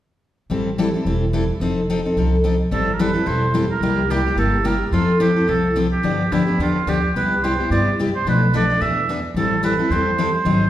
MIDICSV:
0, 0, Header, 1, 4, 480
1, 0, Start_track
1, 0, Key_signature, 0, "minor"
1, 0, Tempo, 276625
1, 871, Time_signature, 4, 2, 24, 8
1, 18565, End_track
2, 0, Start_track
2, 0, Title_t, "Oboe"
2, 0, Program_c, 0, 68
2, 4732, Note_on_c, 0, 69, 78
2, 5101, Note_on_c, 0, 70, 51
2, 5127, Note_off_c, 0, 69, 0
2, 5213, Note_on_c, 0, 71, 74
2, 5239, Note_off_c, 0, 70, 0
2, 5682, Note_on_c, 0, 72, 74
2, 5708, Note_off_c, 0, 71, 0
2, 6154, Note_off_c, 0, 72, 0
2, 6441, Note_on_c, 0, 70, 72
2, 7123, Note_on_c, 0, 67, 77
2, 7149, Note_off_c, 0, 70, 0
2, 7596, Note_off_c, 0, 67, 0
2, 7604, Note_on_c, 0, 69, 79
2, 8092, Note_on_c, 0, 70, 75
2, 8118, Note_off_c, 0, 69, 0
2, 8455, Note_off_c, 0, 70, 0
2, 8554, Note_on_c, 0, 65, 74
2, 8999, Note_off_c, 0, 65, 0
2, 9046, Note_on_c, 0, 67, 77
2, 9527, Note_on_c, 0, 69, 76
2, 9553, Note_off_c, 0, 67, 0
2, 10001, Note_off_c, 0, 69, 0
2, 10283, Note_on_c, 0, 67, 72
2, 10982, Note_on_c, 0, 64, 70
2, 11008, Note_off_c, 0, 67, 0
2, 11449, Note_off_c, 0, 64, 0
2, 11486, Note_on_c, 0, 65, 73
2, 11964, Note_on_c, 0, 67, 84
2, 11990, Note_off_c, 0, 65, 0
2, 12315, Note_off_c, 0, 67, 0
2, 12432, Note_on_c, 0, 71, 85
2, 12909, Note_on_c, 0, 72, 79
2, 12935, Note_off_c, 0, 71, 0
2, 13373, Note_off_c, 0, 72, 0
2, 13388, Note_on_c, 0, 74, 79
2, 13821, Note_off_c, 0, 74, 0
2, 14150, Note_on_c, 0, 72, 81
2, 14326, Note_off_c, 0, 72, 0
2, 14380, Note_on_c, 0, 71, 86
2, 14797, Note_off_c, 0, 71, 0
2, 14861, Note_on_c, 0, 74, 85
2, 15304, Note_on_c, 0, 76, 77
2, 15330, Note_off_c, 0, 74, 0
2, 15770, Note_off_c, 0, 76, 0
2, 16259, Note_on_c, 0, 69, 83
2, 16694, Note_off_c, 0, 69, 0
2, 16735, Note_on_c, 0, 71, 84
2, 17205, Note_on_c, 0, 72, 93
2, 17231, Note_off_c, 0, 71, 0
2, 17934, Note_off_c, 0, 72, 0
2, 17944, Note_on_c, 0, 72, 82
2, 18565, Note_off_c, 0, 72, 0
2, 18565, End_track
3, 0, Start_track
3, 0, Title_t, "Steel-string acoustic guitar"
3, 0, Program_c, 1, 25
3, 863, Note_on_c, 1, 52, 50
3, 877, Note_on_c, 1, 55, 54
3, 880, Note_on_c, 1, 60, 55
3, 884, Note_on_c, 1, 69, 60
3, 887, Note_on_c, 1, 64, 60
3, 1185, Note_off_c, 1, 52, 0
3, 1192, Note_off_c, 1, 55, 0
3, 1193, Note_off_c, 1, 60, 0
3, 1196, Note_off_c, 1, 69, 0
3, 1197, Note_off_c, 1, 64, 0
3, 1359, Note_on_c, 1, 52, 71
3, 1363, Note_on_c, 1, 55, 71
3, 1366, Note_on_c, 1, 60, 68
3, 1370, Note_on_c, 1, 64, 73
3, 1375, Note_on_c, 1, 69, 77
3, 1530, Note_off_c, 1, 52, 0
3, 1532, Note_off_c, 1, 55, 0
3, 1533, Note_off_c, 1, 60, 0
3, 1535, Note_off_c, 1, 64, 0
3, 1538, Note_off_c, 1, 69, 0
3, 1630, Note_on_c, 1, 69, 42
3, 1641, Note_on_c, 1, 64, 35
3, 1667, Note_on_c, 1, 60, 37
3, 1824, Note_off_c, 1, 60, 0
3, 1826, Note_off_c, 1, 69, 0
3, 1828, Note_off_c, 1, 64, 0
3, 1843, Note_on_c, 1, 55, 46
3, 1845, Note_on_c, 1, 60, 51
3, 1848, Note_on_c, 1, 52, 43
3, 1848, Note_on_c, 1, 64, 52
3, 1857, Note_on_c, 1, 69, 54
3, 2154, Note_off_c, 1, 55, 0
3, 2155, Note_off_c, 1, 60, 0
3, 2157, Note_off_c, 1, 52, 0
3, 2157, Note_off_c, 1, 64, 0
3, 2161, Note_off_c, 1, 69, 0
3, 2312, Note_on_c, 1, 52, 62
3, 2312, Note_on_c, 1, 60, 58
3, 2314, Note_on_c, 1, 55, 62
3, 2323, Note_on_c, 1, 64, 71
3, 2329, Note_on_c, 1, 69, 64
3, 2485, Note_off_c, 1, 60, 0
3, 2486, Note_off_c, 1, 52, 0
3, 2487, Note_off_c, 1, 55, 0
3, 2491, Note_off_c, 1, 64, 0
3, 2494, Note_off_c, 1, 69, 0
3, 2798, Note_on_c, 1, 53, 51
3, 2799, Note_on_c, 1, 60, 66
3, 2813, Note_on_c, 1, 63, 62
3, 2823, Note_on_c, 1, 69, 61
3, 3111, Note_off_c, 1, 53, 0
3, 3111, Note_off_c, 1, 60, 0
3, 3118, Note_off_c, 1, 63, 0
3, 3123, Note_off_c, 1, 69, 0
3, 3292, Note_on_c, 1, 53, 67
3, 3294, Note_on_c, 1, 60, 71
3, 3303, Note_on_c, 1, 63, 69
3, 3306, Note_on_c, 1, 69, 69
3, 3455, Note_off_c, 1, 53, 0
3, 3456, Note_off_c, 1, 60, 0
3, 3461, Note_off_c, 1, 63, 0
3, 3461, Note_off_c, 1, 69, 0
3, 3557, Note_on_c, 1, 69, 39
3, 3568, Note_on_c, 1, 63, 38
3, 3580, Note_on_c, 1, 60, 35
3, 3748, Note_off_c, 1, 69, 0
3, 3754, Note_off_c, 1, 63, 0
3, 3755, Note_off_c, 1, 60, 0
3, 3764, Note_on_c, 1, 53, 47
3, 3775, Note_on_c, 1, 60, 53
3, 3781, Note_on_c, 1, 63, 49
3, 3793, Note_on_c, 1, 69, 55
3, 4074, Note_off_c, 1, 53, 0
3, 4079, Note_off_c, 1, 60, 0
3, 4082, Note_off_c, 1, 63, 0
3, 4088, Note_off_c, 1, 69, 0
3, 4232, Note_on_c, 1, 53, 64
3, 4241, Note_on_c, 1, 60, 60
3, 4247, Note_on_c, 1, 63, 65
3, 4254, Note_on_c, 1, 69, 74
3, 4404, Note_off_c, 1, 53, 0
3, 4409, Note_off_c, 1, 60, 0
3, 4412, Note_off_c, 1, 63, 0
3, 4416, Note_off_c, 1, 69, 0
3, 4708, Note_on_c, 1, 52, 57
3, 4720, Note_on_c, 1, 60, 68
3, 4721, Note_on_c, 1, 55, 59
3, 4723, Note_on_c, 1, 64, 61
3, 4728, Note_on_c, 1, 69, 65
3, 5026, Note_off_c, 1, 52, 0
3, 5032, Note_off_c, 1, 55, 0
3, 5032, Note_off_c, 1, 60, 0
3, 5033, Note_off_c, 1, 64, 0
3, 5036, Note_off_c, 1, 69, 0
3, 5194, Note_on_c, 1, 52, 79
3, 5199, Note_on_c, 1, 55, 67
3, 5199, Note_on_c, 1, 60, 73
3, 5205, Note_on_c, 1, 64, 76
3, 5215, Note_on_c, 1, 69, 72
3, 5366, Note_off_c, 1, 52, 0
3, 5368, Note_off_c, 1, 55, 0
3, 5368, Note_off_c, 1, 60, 0
3, 5371, Note_off_c, 1, 64, 0
3, 5376, Note_off_c, 1, 69, 0
3, 5441, Note_on_c, 1, 69, 45
3, 5458, Note_on_c, 1, 64, 38
3, 5483, Note_on_c, 1, 60, 36
3, 5645, Note_off_c, 1, 69, 0
3, 5647, Note_off_c, 1, 60, 0
3, 5647, Note_off_c, 1, 64, 0
3, 5654, Note_on_c, 1, 55, 54
3, 5661, Note_on_c, 1, 52, 47
3, 5666, Note_on_c, 1, 69, 50
3, 5667, Note_on_c, 1, 64, 52
3, 5668, Note_on_c, 1, 60, 50
3, 5979, Note_off_c, 1, 55, 0
3, 5983, Note_off_c, 1, 52, 0
3, 5985, Note_off_c, 1, 69, 0
3, 5986, Note_off_c, 1, 60, 0
3, 5986, Note_off_c, 1, 64, 0
3, 6139, Note_on_c, 1, 52, 63
3, 6151, Note_on_c, 1, 55, 69
3, 6154, Note_on_c, 1, 60, 68
3, 6154, Note_on_c, 1, 64, 69
3, 6155, Note_on_c, 1, 69, 72
3, 6319, Note_off_c, 1, 52, 0
3, 6325, Note_off_c, 1, 55, 0
3, 6326, Note_off_c, 1, 60, 0
3, 6326, Note_off_c, 1, 64, 0
3, 6327, Note_off_c, 1, 69, 0
3, 6635, Note_on_c, 1, 48, 56
3, 6638, Note_on_c, 1, 55, 65
3, 6647, Note_on_c, 1, 58, 68
3, 6647, Note_on_c, 1, 64, 64
3, 6650, Note_on_c, 1, 67, 64
3, 6950, Note_off_c, 1, 48, 0
3, 6952, Note_off_c, 1, 55, 0
3, 6956, Note_off_c, 1, 58, 0
3, 6956, Note_off_c, 1, 64, 0
3, 6958, Note_off_c, 1, 67, 0
3, 7120, Note_on_c, 1, 55, 76
3, 7123, Note_on_c, 1, 48, 73
3, 7130, Note_on_c, 1, 58, 81
3, 7133, Note_on_c, 1, 67, 79
3, 7143, Note_on_c, 1, 64, 76
3, 7290, Note_off_c, 1, 55, 0
3, 7291, Note_off_c, 1, 48, 0
3, 7295, Note_off_c, 1, 58, 0
3, 7296, Note_off_c, 1, 67, 0
3, 7301, Note_off_c, 1, 64, 0
3, 7401, Note_on_c, 1, 67, 43
3, 7414, Note_on_c, 1, 64, 45
3, 7420, Note_on_c, 1, 58, 39
3, 7571, Note_off_c, 1, 58, 0
3, 7573, Note_off_c, 1, 64, 0
3, 7582, Note_on_c, 1, 48, 45
3, 7584, Note_off_c, 1, 67, 0
3, 7592, Note_on_c, 1, 58, 61
3, 7594, Note_on_c, 1, 64, 54
3, 7595, Note_on_c, 1, 55, 55
3, 7604, Note_on_c, 1, 67, 54
3, 7905, Note_off_c, 1, 48, 0
3, 7910, Note_off_c, 1, 58, 0
3, 7911, Note_off_c, 1, 55, 0
3, 7911, Note_off_c, 1, 64, 0
3, 7916, Note_off_c, 1, 67, 0
3, 8056, Note_on_c, 1, 48, 61
3, 8064, Note_on_c, 1, 64, 74
3, 8065, Note_on_c, 1, 58, 68
3, 8069, Note_on_c, 1, 55, 74
3, 8074, Note_on_c, 1, 67, 78
3, 8239, Note_off_c, 1, 48, 0
3, 8243, Note_off_c, 1, 58, 0
3, 8243, Note_off_c, 1, 64, 0
3, 8245, Note_off_c, 1, 55, 0
3, 8248, Note_off_c, 1, 67, 0
3, 8547, Note_on_c, 1, 53, 58
3, 8562, Note_on_c, 1, 64, 68
3, 8563, Note_on_c, 1, 60, 65
3, 8564, Note_on_c, 1, 69, 66
3, 8868, Note_off_c, 1, 53, 0
3, 8876, Note_off_c, 1, 64, 0
3, 8877, Note_off_c, 1, 60, 0
3, 8877, Note_off_c, 1, 69, 0
3, 9024, Note_on_c, 1, 53, 79
3, 9024, Note_on_c, 1, 60, 70
3, 9029, Note_on_c, 1, 64, 73
3, 9042, Note_on_c, 1, 69, 80
3, 9204, Note_off_c, 1, 53, 0
3, 9204, Note_off_c, 1, 60, 0
3, 9207, Note_off_c, 1, 64, 0
3, 9213, Note_off_c, 1, 69, 0
3, 9304, Note_on_c, 1, 69, 44
3, 9319, Note_on_c, 1, 64, 43
3, 9338, Note_on_c, 1, 60, 37
3, 9496, Note_off_c, 1, 69, 0
3, 9497, Note_off_c, 1, 64, 0
3, 9498, Note_off_c, 1, 60, 0
3, 9500, Note_on_c, 1, 53, 55
3, 9517, Note_on_c, 1, 69, 51
3, 9518, Note_on_c, 1, 64, 54
3, 9519, Note_on_c, 1, 60, 50
3, 9826, Note_off_c, 1, 53, 0
3, 9834, Note_off_c, 1, 69, 0
3, 9835, Note_off_c, 1, 60, 0
3, 9835, Note_off_c, 1, 64, 0
3, 9989, Note_on_c, 1, 53, 64
3, 9997, Note_on_c, 1, 60, 67
3, 10000, Note_on_c, 1, 64, 69
3, 10012, Note_on_c, 1, 69, 73
3, 10167, Note_off_c, 1, 53, 0
3, 10172, Note_off_c, 1, 60, 0
3, 10173, Note_off_c, 1, 64, 0
3, 10179, Note_off_c, 1, 69, 0
3, 10466, Note_on_c, 1, 50, 55
3, 10471, Note_on_c, 1, 53, 57
3, 10482, Note_on_c, 1, 62, 68
3, 10484, Note_on_c, 1, 59, 64
3, 10493, Note_on_c, 1, 67, 61
3, 10790, Note_off_c, 1, 50, 0
3, 10792, Note_off_c, 1, 53, 0
3, 10798, Note_off_c, 1, 62, 0
3, 10799, Note_off_c, 1, 59, 0
3, 10803, Note_off_c, 1, 67, 0
3, 10964, Note_on_c, 1, 50, 70
3, 10969, Note_on_c, 1, 53, 74
3, 10970, Note_on_c, 1, 59, 74
3, 10975, Note_on_c, 1, 62, 71
3, 10987, Note_on_c, 1, 67, 81
3, 11136, Note_off_c, 1, 50, 0
3, 11139, Note_off_c, 1, 53, 0
3, 11139, Note_off_c, 1, 59, 0
3, 11141, Note_off_c, 1, 62, 0
3, 11148, Note_off_c, 1, 67, 0
3, 11222, Note_on_c, 1, 67, 41
3, 11245, Note_on_c, 1, 62, 39
3, 11261, Note_on_c, 1, 59, 34
3, 11427, Note_off_c, 1, 67, 0
3, 11438, Note_off_c, 1, 62, 0
3, 11440, Note_off_c, 1, 59, 0
3, 11450, Note_on_c, 1, 50, 54
3, 11456, Note_on_c, 1, 53, 58
3, 11460, Note_on_c, 1, 59, 50
3, 11463, Note_on_c, 1, 67, 58
3, 11465, Note_on_c, 1, 62, 57
3, 11762, Note_off_c, 1, 50, 0
3, 11766, Note_off_c, 1, 53, 0
3, 11768, Note_off_c, 1, 59, 0
3, 11769, Note_off_c, 1, 67, 0
3, 11770, Note_off_c, 1, 62, 0
3, 11924, Note_on_c, 1, 53, 61
3, 11926, Note_on_c, 1, 50, 64
3, 11927, Note_on_c, 1, 59, 65
3, 11939, Note_on_c, 1, 62, 72
3, 11943, Note_on_c, 1, 67, 73
3, 12096, Note_off_c, 1, 53, 0
3, 12097, Note_off_c, 1, 50, 0
3, 12098, Note_off_c, 1, 59, 0
3, 12104, Note_off_c, 1, 62, 0
3, 12106, Note_off_c, 1, 67, 0
3, 12425, Note_on_c, 1, 59, 53
3, 12427, Note_on_c, 1, 48, 57
3, 12433, Note_on_c, 1, 55, 56
3, 12433, Note_on_c, 1, 64, 73
3, 12439, Note_on_c, 1, 67, 63
3, 12730, Note_off_c, 1, 59, 0
3, 12731, Note_off_c, 1, 48, 0
3, 12734, Note_off_c, 1, 55, 0
3, 12734, Note_off_c, 1, 64, 0
3, 12737, Note_off_c, 1, 67, 0
3, 12905, Note_on_c, 1, 48, 72
3, 12907, Note_on_c, 1, 55, 63
3, 12915, Note_on_c, 1, 67, 75
3, 12916, Note_on_c, 1, 59, 71
3, 12918, Note_on_c, 1, 64, 73
3, 13067, Note_off_c, 1, 48, 0
3, 13068, Note_off_c, 1, 55, 0
3, 13072, Note_off_c, 1, 67, 0
3, 13073, Note_off_c, 1, 59, 0
3, 13074, Note_off_c, 1, 64, 0
3, 13178, Note_on_c, 1, 67, 43
3, 13195, Note_on_c, 1, 64, 41
3, 13208, Note_on_c, 1, 59, 35
3, 13365, Note_off_c, 1, 67, 0
3, 13374, Note_off_c, 1, 64, 0
3, 13376, Note_off_c, 1, 59, 0
3, 13386, Note_on_c, 1, 48, 48
3, 13392, Note_on_c, 1, 55, 53
3, 13397, Note_on_c, 1, 59, 58
3, 13399, Note_on_c, 1, 64, 60
3, 13406, Note_on_c, 1, 67, 53
3, 13691, Note_off_c, 1, 48, 0
3, 13694, Note_off_c, 1, 55, 0
3, 13696, Note_off_c, 1, 59, 0
3, 13697, Note_off_c, 1, 64, 0
3, 13701, Note_off_c, 1, 67, 0
3, 13871, Note_on_c, 1, 48, 72
3, 13879, Note_on_c, 1, 59, 66
3, 13884, Note_on_c, 1, 55, 70
3, 13892, Note_on_c, 1, 64, 72
3, 13893, Note_on_c, 1, 67, 70
3, 14030, Note_off_c, 1, 48, 0
3, 14034, Note_off_c, 1, 59, 0
3, 14037, Note_off_c, 1, 55, 0
3, 14041, Note_off_c, 1, 64, 0
3, 14041, Note_off_c, 1, 67, 0
3, 14342, Note_on_c, 1, 47, 61
3, 14348, Note_on_c, 1, 57, 58
3, 14350, Note_on_c, 1, 53, 55
3, 14354, Note_on_c, 1, 62, 66
3, 14354, Note_on_c, 1, 69, 61
3, 14649, Note_off_c, 1, 47, 0
3, 14652, Note_off_c, 1, 57, 0
3, 14653, Note_off_c, 1, 53, 0
3, 14654, Note_off_c, 1, 62, 0
3, 14655, Note_off_c, 1, 69, 0
3, 14809, Note_on_c, 1, 47, 69
3, 14819, Note_on_c, 1, 53, 77
3, 14820, Note_on_c, 1, 62, 78
3, 14821, Note_on_c, 1, 57, 78
3, 14841, Note_on_c, 1, 69, 73
3, 14979, Note_off_c, 1, 47, 0
3, 14984, Note_off_c, 1, 53, 0
3, 14985, Note_off_c, 1, 57, 0
3, 14985, Note_off_c, 1, 62, 0
3, 14995, Note_off_c, 1, 69, 0
3, 15095, Note_on_c, 1, 69, 44
3, 15116, Note_on_c, 1, 62, 43
3, 15122, Note_on_c, 1, 57, 38
3, 15276, Note_off_c, 1, 62, 0
3, 15283, Note_off_c, 1, 57, 0
3, 15283, Note_off_c, 1, 69, 0
3, 15283, Note_on_c, 1, 52, 52
3, 15290, Note_on_c, 1, 59, 56
3, 15297, Note_on_c, 1, 62, 53
3, 15300, Note_on_c, 1, 68, 57
3, 15599, Note_off_c, 1, 52, 0
3, 15602, Note_off_c, 1, 59, 0
3, 15606, Note_off_c, 1, 62, 0
3, 15607, Note_off_c, 1, 68, 0
3, 15774, Note_on_c, 1, 52, 60
3, 15775, Note_on_c, 1, 59, 68
3, 15784, Note_on_c, 1, 62, 76
3, 15795, Note_on_c, 1, 68, 70
3, 15941, Note_off_c, 1, 52, 0
3, 15942, Note_off_c, 1, 59, 0
3, 15946, Note_off_c, 1, 62, 0
3, 15952, Note_off_c, 1, 68, 0
3, 16249, Note_on_c, 1, 52, 58
3, 16251, Note_on_c, 1, 55, 64
3, 16260, Note_on_c, 1, 64, 62
3, 16264, Note_on_c, 1, 60, 66
3, 16270, Note_on_c, 1, 69, 64
3, 16561, Note_off_c, 1, 52, 0
3, 16562, Note_off_c, 1, 55, 0
3, 16566, Note_off_c, 1, 64, 0
3, 16568, Note_off_c, 1, 60, 0
3, 16572, Note_off_c, 1, 69, 0
3, 16707, Note_on_c, 1, 52, 74
3, 16716, Note_on_c, 1, 55, 79
3, 16719, Note_on_c, 1, 60, 76
3, 16723, Note_on_c, 1, 69, 82
3, 16725, Note_on_c, 1, 64, 80
3, 16887, Note_off_c, 1, 52, 0
3, 16891, Note_off_c, 1, 55, 0
3, 16893, Note_off_c, 1, 60, 0
3, 16895, Note_off_c, 1, 69, 0
3, 16896, Note_off_c, 1, 64, 0
3, 16986, Note_on_c, 1, 69, 44
3, 16998, Note_on_c, 1, 64, 39
3, 17007, Note_on_c, 1, 60, 37
3, 17185, Note_off_c, 1, 64, 0
3, 17187, Note_off_c, 1, 60, 0
3, 17187, Note_on_c, 1, 52, 50
3, 17188, Note_off_c, 1, 69, 0
3, 17205, Note_on_c, 1, 55, 57
3, 17206, Note_on_c, 1, 64, 54
3, 17208, Note_on_c, 1, 60, 55
3, 17217, Note_on_c, 1, 69, 61
3, 17509, Note_off_c, 1, 52, 0
3, 17518, Note_off_c, 1, 55, 0
3, 17518, Note_off_c, 1, 64, 0
3, 17519, Note_off_c, 1, 60, 0
3, 17524, Note_off_c, 1, 69, 0
3, 17668, Note_on_c, 1, 52, 61
3, 17674, Note_on_c, 1, 60, 74
3, 17677, Note_on_c, 1, 55, 69
3, 17680, Note_on_c, 1, 64, 77
3, 17693, Note_on_c, 1, 69, 72
3, 17846, Note_off_c, 1, 52, 0
3, 17849, Note_off_c, 1, 60, 0
3, 17851, Note_off_c, 1, 55, 0
3, 17852, Note_off_c, 1, 64, 0
3, 17859, Note_off_c, 1, 69, 0
3, 18136, Note_on_c, 1, 51, 60
3, 18140, Note_on_c, 1, 54, 63
3, 18148, Note_on_c, 1, 63, 69
3, 18152, Note_on_c, 1, 68, 60
3, 18156, Note_on_c, 1, 60, 60
3, 18462, Note_off_c, 1, 51, 0
3, 18464, Note_off_c, 1, 54, 0
3, 18469, Note_off_c, 1, 63, 0
3, 18470, Note_off_c, 1, 68, 0
3, 18472, Note_off_c, 1, 60, 0
3, 18565, End_track
4, 0, Start_track
4, 0, Title_t, "Upright bass"
4, 0, Program_c, 2, 32
4, 863, Note_on_c, 2, 33, 59
4, 1632, Note_off_c, 2, 33, 0
4, 1823, Note_on_c, 2, 28, 55
4, 2592, Note_off_c, 2, 28, 0
4, 2778, Note_on_c, 2, 29, 73
4, 3548, Note_off_c, 2, 29, 0
4, 3749, Note_on_c, 2, 36, 62
4, 4515, Note_off_c, 2, 36, 0
4, 4706, Note_on_c, 2, 33, 71
4, 5474, Note_off_c, 2, 33, 0
4, 5654, Note_on_c, 2, 28, 61
4, 6427, Note_off_c, 2, 28, 0
4, 6606, Note_on_c, 2, 36, 76
4, 7384, Note_off_c, 2, 36, 0
4, 7558, Note_on_c, 2, 31, 65
4, 8340, Note_off_c, 2, 31, 0
4, 8535, Note_on_c, 2, 41, 69
4, 9311, Note_off_c, 2, 41, 0
4, 9510, Note_on_c, 2, 36, 63
4, 10281, Note_off_c, 2, 36, 0
4, 10478, Note_on_c, 2, 43, 67
4, 10861, Note_off_c, 2, 43, 0
4, 10953, Note_on_c, 2, 41, 67
4, 11362, Note_off_c, 2, 41, 0
4, 11426, Note_on_c, 2, 40, 63
4, 11839, Note_off_c, 2, 40, 0
4, 11909, Note_on_c, 2, 38, 69
4, 12320, Note_off_c, 2, 38, 0
4, 12393, Note_on_c, 2, 36, 64
4, 13163, Note_off_c, 2, 36, 0
4, 13365, Note_on_c, 2, 43, 64
4, 14130, Note_off_c, 2, 43, 0
4, 14315, Note_on_c, 2, 35, 78
4, 15083, Note_off_c, 2, 35, 0
4, 15283, Note_on_c, 2, 40, 71
4, 16048, Note_off_c, 2, 40, 0
4, 16213, Note_on_c, 2, 33, 74
4, 16989, Note_off_c, 2, 33, 0
4, 17176, Note_on_c, 2, 40, 66
4, 17950, Note_off_c, 2, 40, 0
4, 18131, Note_on_c, 2, 32, 75
4, 18565, Note_off_c, 2, 32, 0
4, 18565, End_track
0, 0, End_of_file